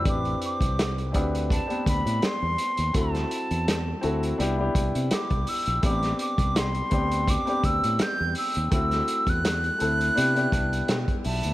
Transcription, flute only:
X:1
M:4/4
L:1/16
Q:"Swing 16ths" 1/4=83
K:Ador
V:1 name="Flute"
d'2 d'4 z2 a2 b2 c'4 | a8 z4 d'2 e'2 | d'2 d'2 c'4 d'2 e'2 g'2 e'2 | e'3 f'8- f'3 a2 |]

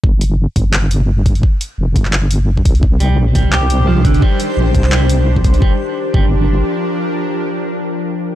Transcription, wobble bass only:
X:1
M:4/4
L:1/8
Q:"Swing 16ths" 1/4=172
K:Gm
V:1 name="Wobble bass" clef=bass
G,,,2 z G,,,4- G,,, | z2 F,,, G,,,4 C,,- | C,,2 B,,, C,,4- C,, | z2 B,,, C,,4- C,, |
G,,, z2 G,,,3 z2 | z8 |]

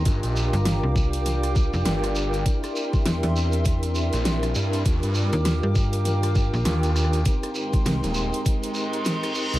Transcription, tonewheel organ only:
X:1
M:4/4
L:1/8
Q:"Swing 16ths" 1/4=100
K:Gphr
V:1 name="Tonewheel organ"
[DFGB]8 | [D=EGB]8 | [DFGB]8 | [CEGB]8 |]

